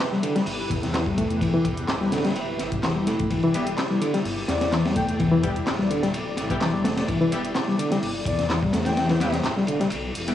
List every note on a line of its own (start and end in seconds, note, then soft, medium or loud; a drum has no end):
0.00 10.35 E4 medium
0.00 10.35 G4 medium
0.00 3.29 B4 medium
0.00 snare loud
0.12 0.22 G3 medium
0.12 snare soft
0.23 0.34 D3 loud
0.23 closed hi-hat medium
0.23 ride medium
0.36 0.42 G3 loud
0.36 snare medium
0.36 closed hi-hat soft
0.46 0.66 G1 medium
0.46 closed hi-hat soft
0.46 open hi-hat medium
0.70 1.85 E2 medium
0.70 kick loud
0.70 closed hi-hat medium
0.70 ride medium
0.83 snare soft
0.83 closed hi-hat soft
0.94 1.05 E3 medium
0.94 snare loud
0.94 clap loud
0.94 closed hi-hat soft
0.94 ride medium
1.06 1.17 G3 medium
1.06 kick loud
1.18 1.40 A3 medium
1.18 kick loud
1.18 closed hi-hat medium
1.18 ride medium
1.30 closed hi-hat soft
1.41 1.52 E3 medium
1.41 kick loud
1.41 closed hi-hat soft
1.41 ride medium
1.54 1.63 E3 loud
1.65 kick loud
1.65 closed hi-hat medium
1.65 ride medium
1.78 closed hi-hat soft
1.89 2.61 D1 medium
1.89 snare loud
1.89 clap loud
1.89 closed hi-hat soft
1.89 ride medium
2.01 2.11 G3 medium
2.01 snare soft
2.12 2.24 D3 loud
2.12 snare medium
2.12 closed hi-hat medium
2.12 ride medium
2.18 snare medium
2.18 ride medium
2.25 2.31 G3 loud
2.25 snare medium
2.25 closed hi-hat soft
2.25 ride medium
2.30 snare medium
2.30 ride medium
2.36 closed hi-hat soft
2.36 ride medium
2.59 2.79 A1 medium
2.59 snare soft
2.59 closed hi-hat medium
2.59 ride medium
2.72 kick medium
2.72 closed hi-hat soft
2.83 3.27 E1 medium
2.83 2.94 E3 medium
2.83 snare loud
2.83 clap loud
2.83 closed hi-hat soft
2.83 ride medium
2.96 3.06 G3 medium
3.07 3.29 A3 medium
3.07 snare soft
3.07 closed hi-hat medium
3.07 ride medium
3.19 kick loud
3.19 closed hi-hat soft
3.30 3.74 E1 loud
3.30 3.41 E3 medium
3.30 10.35 D5 medium
3.30 kick loud
3.30 closed hi-hat soft
3.30 ride medium
3.42 3.53 E3 loud
3.42 ride soft
3.54 3.67 G3 medium
3.54 3.66 B3 medium
3.54 3.67 E4 medium
3.54 3.67 G4 medium
3.54 closed hi-hat medium
3.54 ride medium
3.67 closed hi-hat soft
3.78 snare loud
3.78 clap loud
3.78 closed hi-hat soft
3.78 ride medium
3.90 4.00 G3 medium
3.90 snare soft
4.01 4.13 D3 loud
4.01 closed hi-hat medium
4.01 ride medium
4.14 4.19 G3 loud
4.14 snare medium
4.14 closed hi-hat soft
4.25 4.44 G1 medium
4.25 closed hi-hat soft
4.25 open hi-hat medium
4.48 5.63 E2 loud
4.48 4.57 D5 medium
4.48 snare loud
4.48 closed hi-hat medium
4.48 ride medium
4.61 4.68 D5 medium
4.61 snare loud
4.61 closed hi-hat soft
4.61 ride medium
4.72 4.83 E3 medium
4.72 snare loud
4.72 clap loud
4.72 closed hi-hat soft
4.72 ride medium
4.85 4.95 G3 medium
4.85 snare loud
4.85 ride medium
4.96 5.18 A3 medium
4.96 5.04 G5 medium
4.96 kick medium
4.96 closed hi-hat medium
4.96 ride medium
5.09 5.16 G5 medium
5.09 closed hi-hat soft
5.20 5.30 E3 medium
5.20 kick loud
5.20 closed hi-hat soft
5.20 ride medium
5.32 5.41 E3 loud
5.43 5.55 G3 medium
5.43 5.55 B3 medium
5.43 5.55 E4 medium
5.43 5.55 G4 loud
5.43 kick loud
5.43 closed hi-hat medium
5.43 ride medium
5.56 closed hi-hat soft
5.67 6.39 D1 medium
5.67 snare loud
5.67 clap loud
5.67 closed hi-hat soft
5.67 ride medium
5.79 5.89 G3 medium
5.79 snare soft
5.91 6.02 D3 loud
5.91 closed hi-hat medium
5.91 ride medium
6.03 6.08 G3 loud
6.03 snare soft
6.03 closed hi-hat soft
6.14 closed hi-hat soft
6.14 ride medium
6.37 6.57 A1 medium
6.37 snare soft
6.37 closed hi-hat medium
6.37 ride medium
6.50 6.57 G3 medium
6.50 6.57 B3 medium
6.50 6.57 E4 medium
6.50 6.57 G4 medium
6.50 kick medium
6.50 closed hi-hat soft
6.60 7.05 E1 medium
6.60 6.72 E3 medium
6.60 snare loud
6.60 clap loud
6.60 closed hi-hat soft
6.60 ride medium
6.74 6.84 G3 medium
6.84 7.07 A3 medium
6.84 snare loud
6.84 closed hi-hat medium
6.84 ride medium
6.96 snare loud
6.96 closed hi-hat soft
6.96 ride medium
7.08 7.52 E1 loud
7.08 7.19 E3 medium
7.08 kick loud
7.08 closed hi-hat soft
7.08 ride medium
7.21 7.30 E3 loud
7.21 ride soft
7.32 7.44 G3 medium
7.32 7.44 B3 medium
7.32 7.44 E4 medium
7.32 7.44 G4 loud
7.32 closed hi-hat medium
7.32 ride medium
7.45 closed hi-hat soft
7.55 snare loud
7.55 clap loud
7.55 closed hi-hat soft
7.55 ride medium
7.68 7.78 G3 medium
7.68 snare soft
7.79 7.90 D3 loud
7.79 closed hi-hat medium
7.79 ride medium
7.91 7.97 G3 loud
7.91 snare medium
7.91 closed hi-hat soft
8.02 8.22 G1 medium
8.02 closed hi-hat soft
8.02 open hi-hat medium
8.26 9.41 E2 loud
8.26 8.35 D5 medium
8.26 kick loud
8.26 closed hi-hat medium
8.26 ride medium
8.39 8.46 D5 medium
8.39 snare soft
8.39 closed hi-hat soft
8.50 8.61 E3 medium
8.50 snare loud
8.50 clap loud
8.50 closed hi-hat soft
8.50 ride medium
8.63 8.73 G3 medium
8.63 kick loud
8.73 8.97 A3 medium
8.73 snare loud
8.73 closed hi-hat medium
8.73 ride medium
8.85 9.33 G5 loud
8.85 snare loud
8.85 closed hi-hat soft
8.85 ride medium
8.97 9.08 E3 medium
8.97 snare loud
8.97 closed hi-hat soft
8.97 ride medium
9.09 9.19 E3 loud
9.09 snare loud
9.09 ride medium
9.20 9.33 G3 medium
9.20 9.33 B3 medium
9.20 9.33 E4 medium
9.20 9.33 G4 loud
9.20 snare loud
9.20 closed hi-hat medium
9.20 ride medium
9.32 snare loud
9.32 closed hi-hat soft
9.32 ride medium
9.44 9.93 D1 loud
9.44 snare loud
9.44 clap loud
9.44 closed hi-hat soft
9.44 ride medium
9.57 9.67 G3 medium
9.57 snare soft
9.67 9.79 D3 loud
9.67 closed hi-hat medium
9.67 ride medium
9.79 9.86 G3 loud
9.79 snare soft
9.79 closed hi-hat soft
9.90 10.11 B1 loud
9.90 closed hi-hat soft
9.90 ride medium
10.15 10.35 E1 medium
10.15 closed hi-hat medium
10.15 open hi-hat medium
10.28 10.35 G3 medium
10.28 10.35 B3 medium
10.28 10.35 E4 medium
10.28 10.35 G4 medium
10.28 closed hi-hat soft